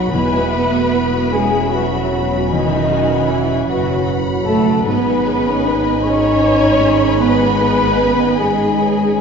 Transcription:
Already playing: B2 F#3 B3 C#4 D#4 F#4 B4 D#5 F#5 B5
0.12 E1 E2 G#3 B3 B4 E5 G#5 B5
0.34 F#3 F#4
0.53 A3 F#4 B4 F#5
0.73 F#4 B4
0.92 B3 E4 F#4 E5
1.13 F#4 F#5
1.32 G#3 C#4 G#4 B4 G#5 B5
1.53 F#4 F#5
1.71 F#3 F#4 B4 F#5
1.93 F#3 F#4
2.12 B2 F#3
2.32 F#3 F#4
2.49 E2 D#3 D#4 D#5 F#5 G#5
2.71 B2 F#3
2.89 F#4
3.09 F#3 B4
3.28 E3 E4 F#4 E5
3.48 F#4 F#5
3.66 F#1 F#3 F#4 B4 F#5 B5
3.87 F#4 F#5
4.07 F#4 B4
4.26 F#3 F#4
4.45 B2 F#3 A3 A4 A5
4.65 F#3 F#4
4.84 G#1 G#2 B3 B4 D#5 G#5 B5
5.06 D#4
5.24 C#4 D#4 G#4
5.43 D#4 B4
5.63 C#4 D#4
5.83 D#4 D#5
6.02 C#4 G#4 C#5 B5 C#6
6.22 D#4 D#5
6.42 B4
6.61 D#4
6.80 G#3
7.00 D#3 D#4
7.20 G#2 B3 B4 B5
7.42 G#3
7.60 G#3 D#4 G#4
7.80 D#4 B4
8.01 B3 C#4
8.18 D#4 D#5
8.38 G#3 D#4 G#4 G#5 B5
8.59 D#4 D#5
8.80 C#4 B4
9.01 D#4

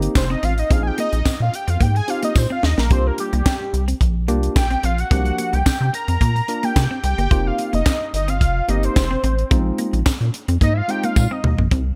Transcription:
Already playing: A#3 C4 D#4 G4
0.02 closed hi-hat
0.15 F1 C5, muted clean electric guitar stroke, kick, snare, clap, tambourine
0.30 C4 D#5
0.43 A1 C4 F5, closed hi-hat
0.58 D#5, closed hi-hat
0.70 A#1 C4 D#4 F4 G#4 F5, kick, closed hi-hat
0.83 G#5
0.87 G5
0.98 A#3 D#5, closed hi-hat
1.13 A#1, muted clean electric guitar stroke, closed hi-hat
1.25 A#2 C4, kick, snare, clap, tambourine
1.40 A#2 F5
1.53 G5, muted clean electric guitar stroke, closed hi-hat
1.68 F2 C4 F5, closed hi-hat
1.80 G#2 A#3 G5, kick, closed hi-hat
1.95 G#5, muted clean electric guitar stroke, closed hi-hat
2.08 C4 D#4 F4 G4 F5, closed hi-hat
2.23 A#3 D#5, closed hi-hat
2.35 A#2 C5, kick, snare, tambourine
2.50 C4 F5
2.63 D#2 D#5, muted clean electric guitar stroke, snare
2.78 A#1 A#3 A#4, snare
2.90 C2 A#3 C4 D4 F4 G4 C5, kick, closed hi-hat
3.07 A#4
3.18 G4, muted clean electric guitar stroke, closed hi-hat
3.33 C2 A#3 G4, closed hi-hat
3.46 C4, kick, snare, clap, tambourine
3.60 muted clean electric guitar stroke
3.73 C2, closed hi-hat
3.88 C4, closed hi-hat
4.01 A#1, kick, closed hi-hat
4.28 C2 A#3 D4 F4 G4, closed hi-hat
4.43 closed hi-hat
4.56 A#1 G5, muted clean electric guitar stroke, kick, snare, clap, tambourine
4.70 C4, closed hi-hat
4.83 A#1 C4 F5, closed hi-hat
4.98 F#5, closed hi-hat
5.11 C2 F3 A#3 C4 D4 G4, kick, closed hi-hat
5.25 closed hi-hat
5.38 A#3, closed hi-hat
5.53 C2 G5, muted clean electric guitar stroke, closed hi-hat
5.66 C3 C4, kick, snare, clap, tambourine
5.81 C3
5.93 A#5, muted clean electric guitar stroke, closed hi-hat
6.08 F2 C4, closed hi-hat
6.21 A#2 A#3, kick, closed hi-hat
6.36 muted clean electric guitar stroke, closed hi-hat
6.48 A#3 D4 F4 A#4, closed hi-hat
6.63 A#3 G5, closed hi-hat
6.76 C3, kick, snare, clap, tambourine
6.91 C4
7.03 C2 G5, muted clean electric guitar stroke, closed hi-hat
7.18 G1 A#3, closed hi-hat
7.31 F1 A#3 C4 D#4 F4 G4, kick, closed hi-hat
7.47 F5
7.58 muted clean electric guitar stroke, closed hi-hat
7.73 F1 A#3 D#5, closed hi-hat
7.86 C4, kick, snare, clap, tambourine
8.01 muted clean electric guitar stroke
8.14 G1 D#5, closed hi-hat
8.28 C4 F5, closed hi-hat
8.41 F1, kick, closed hi-hat
8.68 G1 A#3 C4 D#4 G4 D#5, closed hi-hat
8.83 C5, closed hi-hat
8.96 F1, muted clean electric guitar stroke, kick, snare, clap, tambourine
9.11 C4
9.24 A1 C4, closed hi-hat
9.39 closed hi-hat
9.51 A#1 G#3 C4 D#4 F4, kick, closed hi-hat
9.78 A#3, closed hi-hat
9.93 A#1, muted clean electric guitar stroke, closed hi-hat
10.06 A#2 C4, kick, snare, clap, tambourine
10.21 A#2, closed hi-hat
10.34 muted clean electric guitar stroke, closed hi-hat
10.48 F2 C4, closed hi-hat
10.61 G#2 A#3 D#5, kick, closed hi-hat
10.74 E5 F5, muted clean electric guitar stroke
10.88 G#3 C4 D#4 F4 G5, closed hi-hat
11.03 A#3 F5, closed hi-hat
11.16 A#2, kick, high tom, tambourine
11.31 C4 D#5
11.44 D#2, muted clean electric guitar stroke, mid tom
11.58 A#1 A#3, floor tom
11.71 C2 C4, kick, closed hi-hat

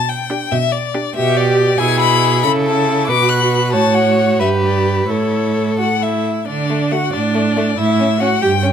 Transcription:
Already playing: B2 A5
0.09 G5
0.30 D4 G4
0.51 B2 E5
0.72 D5
0.95 D4 G4
1.16 B2 G4 E5
1.36 D5
1.78 B2 E4 G#4 G#5
2.00 B5
2.43 C#3 E4 A4 B5
2.64 A5
3.07 B2 F#4 B4 D6
3.29 F#6
3.73 A2 F#4 C#5 A5
3.95 F#5
4.40 G2 G4 B4 E5
4.63 D5
5.09 A2 E4 A4 C#5
5.78 F#4 F#5
6.01 E4 E5
6.47 D3 D4 D5
6.70 A3
6.91 A3 F#4 F#5
7.13 A2 D4 D5
7.35 A3
7.57 A3
7.78 A2 E4 E5
8.00 C#4
8.20 C#4 F#4 F#5
8.42 G2 G4 G5
8.63 C#4

